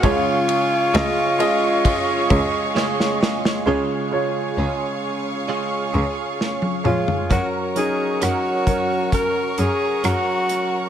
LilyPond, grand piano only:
<<
  \new Staff \with { instrumentName = "Grand piano" } { \time 4/4 \key fis \major \tempo 4 = 66 <gis eis' cis''>4 <gis eis' dis''>8 <gis eis' dis''>2 r8 | <gis eis' cis''>8 <gis eis' cis''>2 r4 <gis eis' cis''>8 | <fis cis' ais'>8 <fis cis' dis'>4 <fis cis' ais'>2 r8 | }
  \new Staff \with { instrumentName = "Grand piano" } { \clef bass \time 4/4 \key fis \major cis4. r2 r8 | cis4. r2 r8 | r1 | }
>>